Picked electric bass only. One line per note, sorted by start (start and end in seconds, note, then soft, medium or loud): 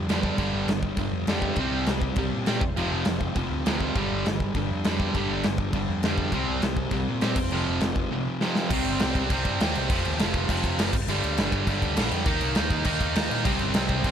0.08 0.30 F2 medium
0.38 0.49 G1 loud
0.53 0.64 G1 loud
0.67 0.89 G1 medium
0.97 1.08 G1 loud
1.12 1.23 F2 medium
1.26 1.49 F2 medium
1.56 1.68 C2 medium
1.72 1.83 C2 loud
1.87 2.08 C2 medium
2.17 2.28 C2 medium
2.34 2.44 A#2 medium
2.48 2.59 A#2 medium
2.61 2.72 F1 medium
2.77 2.88 F1 medium
2.92 3.03 F1 medium
3.06 3.28 F1 medium
3.35 3.47 F1 medium
3.50 3.62 D2 medium
3.67 3.88 D2 medium
3.96 4.07 G1 medium
4.12 4.22 G1 medium
4.27 4.48 G1 loud
4.55 4.66 G1 medium
4.71 4.82 F2 medium
4.86 5.07 F2 medium
5.14 5.25 G1 medium
5.31 5.41 G1 loud
5.46 5.67 G1 loud
5.73 5.84 G1 medium
5.89 6.00 F2 medium
6.03 6.25 F2 medium
6.32 6.43 C2 loud
6.49 6.60 C2 loud
6.62 6.84 C2 loud
6.91 7.02 C2 medium
7.09 7.19 A#2 loud
7.23 7.34 A#2 medium
7.36 7.47 F1 medium
7.52 7.63 F1 loud
7.68 7.79 F1 loud
7.82 8.03 F1 medium
8.70 8.84 C2 loud
8.87 9.00 G1 loud
9.02 9.15 C2 loud
9.15 9.29 C2 medium
9.31 9.44 C2 loud
9.45 9.59 G2 loud
9.60 9.74 D#2 loud
9.76 9.89 C2 medium
9.90 10.03 F1 loud
10.07 10.19 D#2 medium
10.21 10.34 F1 loud
10.34 10.48 F1 loud
10.48 10.62 F1 medium
10.63 10.77 F1 loud
10.78 10.92 F#1 loud
10.93 11.07 G1 medium
11.08 11.22 G1 loud
11.23 11.37 D2 loud
11.39 11.52 G1 loud
11.52 11.66 G1 medium
11.67 11.81 G1 medium
11.82 11.96 D2 loud
11.97 12.10 A#1 loud
12.11 12.25 F2 medium
12.26 12.40 D#2 loud
12.42 12.56 C2 loud
12.57 12.70 D#2 loud
12.71 12.85 D#2 medium
12.85 12.99 D#2 medium
13.00 13.14 D#2 loud
13.16 13.29 D#2 loud
13.31 13.44 A#2 medium
13.45 13.59 C2 medium
13.60 13.74 G1 medium
13.76 13.89 C2 loud
13.89 14.03 C2 loud
14.04 14.11 C2 loud